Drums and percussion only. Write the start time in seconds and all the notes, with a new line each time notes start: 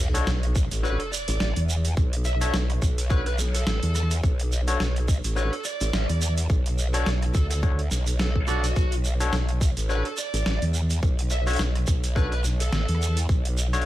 0.15 closed hi-hat, shekere
0.27 snare, shekere
0.43 closed hi-hat
0.56 kick, shekere
0.71 closed hi-hat, shekere
0.84 shekere
1.00 closed hi-hat
1.13 shekere
1.28 closed hi-hat, shekere
1.40 snare, shekere
1.56 closed hi-hat
1.69 shekere
1.85 closed hi-hat, shekere
1.97 kick, shekere
2.13 closed hi-hat
2.25 shekere
2.41 closed hi-hat, shekere
2.54 snare, shekere
2.70 cross-stick, closed hi-hat
2.82 kick, shekere
2.98 closed hi-hat, shekere
3.10 kick, shekere
3.26 closed hi-hat
3.38 snare, shekere
3.55 closed hi-hat, shekere
3.67 snare, shekere
3.83 closed hi-hat
3.95 cross-stick, shekere
4.03 cross-stick
4.11 cross-stick, closed hi-hat, shekere
4.17 cross-stick
4.23 kick, shekere
4.39 closed hi-hat
4.52 shekere
4.68 closed hi-hat, shekere
4.80 snare, shekere
4.96 closed hi-hat
5.08 kick, shekere
5.24 closed hi-hat, shekere
5.37 shekere
5.53 closed hi-hat
5.64 shekere
5.81 closed hi-hat, shekere
5.93 snare, shekere
6.09 closed hi-hat
6.21 shekere
6.37 closed hi-hat, shekere
6.50 kick, shekere
6.66 closed hi-hat
6.79 shekere
6.94 closed hi-hat, shekere
7.06 snare, shekere
7.22 cross-stick, closed hi-hat
7.34 kick, shekere
7.51 closed hi-hat, shekere
7.63 kick, shekere
7.79 closed hi-hat
7.91 snare, shekere
8.06 closed hi-hat, shekere
8.19 snare, shekere
8.36 kick
8.48 cross-stick, shekere
8.64 closed hi-hat, shekere
8.76 kick, shekere
8.92 closed hi-hat
9.05 shekere
9.20 closed hi-hat, shekere
9.33 snare, shekere
9.49 closed hi-hat
9.61 kick, shekere
9.77 closed hi-hat, shekere
9.89 shekere
10.05 closed hi-hat
10.17 shekere
10.34 closed hi-hat, shekere
10.46 snare, shekere
10.62 closed hi-hat
10.74 shekere
10.90 closed hi-hat, shekere
11.03 kick, shekere
11.19 closed hi-hat
11.30 shekere
11.47 closed hi-hat, shekere
11.50 closed hi-hat
11.53 closed hi-hat
11.56 snare, closed hi-hat, shekere
11.75 cross-stick, closed hi-hat
11.87 kick, shekere
12.04 closed hi-hat, shekere
12.16 kick, shekere
12.32 closed hi-hat
12.44 snare, shekere
12.60 closed hi-hat, shekere
12.73 snare, shekere
12.88 closed hi-hat
12.95 cross-stick
13.02 shekere
13.17 closed hi-hat, shekere
13.29 kick, shekere
13.45 closed hi-hat
13.57 shekere
13.73 closed hi-hat, shekere
13.81 closed hi-hat